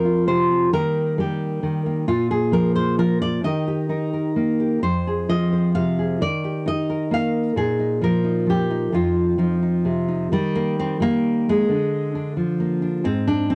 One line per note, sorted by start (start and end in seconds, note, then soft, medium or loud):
0.00 0.73 F2 medium
0.00 0.73 F3 medium
0.00 0.50 C4 soft
0.00 0.27 A#4 medium
0.05 0.71 F4 soft
0.27 0.72 C3 medium
0.27 0.73 C5 loud
0.51 0.71 C4 soft
0.73 1.62 D#3 medium
0.73 1.17 G3 soft
0.73 1.85 A#3 soft
0.73 2.07 D#4 soft
0.73 1.18 A#4 loud
1.18 2.05 G3 medium
1.18 2.09 G4 medium
1.63 2.05 D#3 medium
1.86 3.43 A#3 soft
2.08 3.41 A#2 medium
2.08 2.30 F4 loud
2.31 2.98 G#4 medium
2.52 2.97 F3 medium
2.52 2.75 A#4 medium
2.76 2.98 C5 loud
2.98 3.41 F3 medium
2.98 3.21 A#4 loud
3.22 3.44 D5 loud
3.44 4.80 D#3 medium
3.44 3.88 D#4 soft
3.44 3.66 G4 soft
3.44 3.89 A#4 soft
3.44 4.60 D#5 loud
3.68 4.59 G4 soft
3.89 4.80 D#4 medium
3.89 4.12 A#4 soft
4.13 4.81 A#4 soft
4.36 4.80 A#3 medium
4.60 4.80 G4 soft
4.83 6.21 F2 medium
4.83 5.52 C5 loud
5.07 5.98 G#4 soft
5.29 6.21 F3 medium
5.29 5.75 D#5 loud
5.53 6.18 C5 soft
5.75 6.21 C3 medium
5.75 6.21 F5 loud
5.99 6.19 G#4 soft
6.21 7.53 D#3 medium
6.21 6.67 D5 loud
6.44 7.54 G4 soft
6.66 7.79 D#4 medium
6.66 7.12 D#5 loud
6.90 7.54 A#4 soft
7.11 7.53 A#3 medium
7.11 7.57 F5 loud
7.56 8.89 A#2 medium
7.56 8.02 G#4 loud
7.79 8.24 D#4 soft
8.01 8.45 F3 medium
8.01 8.93 A#4 medium
8.24 8.70 D#4 soft
8.47 8.89 F3 medium
8.47 8.93 G4 medium
8.70 8.94 D#4 soft
8.92 10.32 F2 medium
8.92 9.37 F3 soft
8.92 9.37 D#4 soft
8.92 10.33 F4 medium
9.38 10.32 F3 medium
9.38 9.61 D#4 soft
9.62 10.07 D#4 soft
9.85 10.31 C3 medium
10.08 10.29 D#4 soft
10.32 11.67 D#3 medium
10.32 10.99 G3 loud
10.55 10.78 A#3 loud
10.79 11.02 C4 loud
11.00 11.47 G3 medium
11.00 11.70 A#3 loud
11.49 12.36 G#3 loud
11.69 13.02 D3 medium
12.15 12.81 D4 medium
12.37 13.05 F3 medium
12.60 13.04 A#3 medium
12.82 13.05 D4 medium
13.04 13.55 G#2 medium
13.04 13.49 C4 loud
13.27 13.55 D4 loud
13.50 13.55 C4 loud